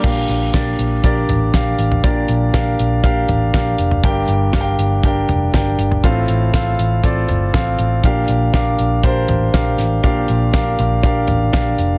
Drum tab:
CC |x---------------|----------------|----------------|----------------|
HH |--x-x-x-x-x-x-x-|x-x-x-x-x-x-x-x-|x-x-x-x-x-x-x-x-|x-x-x-x-x-x-x-x-|
SD |----o-------o---|----o-------o---|----o-------o---|----o-------o---|
FT |----------o----o|----------o----o|----------o----o|----------o-----|
BD |o---o---o---o---|o---o---o---o---|o---o---o---o---|o---o---o---o---|

CC |----------------|----------------|
HH |x-x-x-x-x-x-x-x-|x-x-x-x-x-x-x-x-|
SD |----o-------o-o-|----o-------o---|
FT |----------o-----|----------o-----|
BD |o---o---o---o---|o---o---o---o---|